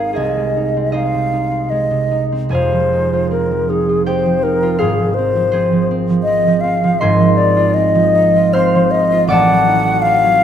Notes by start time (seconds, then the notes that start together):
Already playing: G#1 G#2 G#3 C4 D#4 G#4 A#4 C5 F5 G#5 A#5 C6
0.13 C2 G#4 D#5 G#5
0.36 G#3
0.57 D#4
0.77 C4
0.92 G#3 D#4 C5 D#5 F5
1.14 C3
1.33 D#4
1.51 C4
1.70 G#3 D#5
1.90 C3
2.11 D#4
2.32 C4
2.49 F1 F2 G#4 C5 G#5
2.55 F5
2.73 F3
2.93 D#4
3.13 F4
3.31 C4 A#4
3.51 F3
3.69 D#4 G#4
3.89 F4
4.06 C4 G4 C5 G5
4.26 F3
4.43 D#4 A#4
4.63 F4
4.79 G#1 G#2 F4 G#4 C5 F5
4.99 F3
5.14 C5
5.18 C4
5.36 F3
5.52 C4 G#4 C5
5.72 F3
5.91 C4
6.10 F3
6.23 D#5
6.28 C4
6.47 F3
6.61 C4 F5
6.84 F3
7.00 G#1 G#2 C5 D#5 G#5 C6
7.21 F3
7.37 D#4 D5
7.57 F4
7.74 C4 D#5
7.95 F3
8.15 D#4
8.36 F4
8.53 C4 C5 F5 C6 F6
8.75 F3
8.91 D#4 D#5
9.12 F4
9.27 A1 A2 D5 F#5 D6
9.32 A5
9.50 F#3
9.68 D#4
9.87 F#4
10.02 C4 F5
10.23 F#3